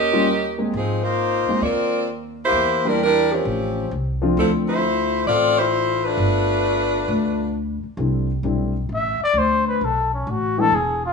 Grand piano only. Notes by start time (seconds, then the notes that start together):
0.12 G3 A#3 C#4 D#4 F4
0.58 G#3 A#3 C4 D#4 G#4
1.49 G#3 A#3 C4 D#4 F4
2.84 G3 A#3 D4 E4 G4
4.21 F3 A3 C4 D4 F4
7.98 G3 A3 C4 D4 E4
8.44 G3 A3 C4 D4 E4
10.58 E3 G#3 B3 D4 E4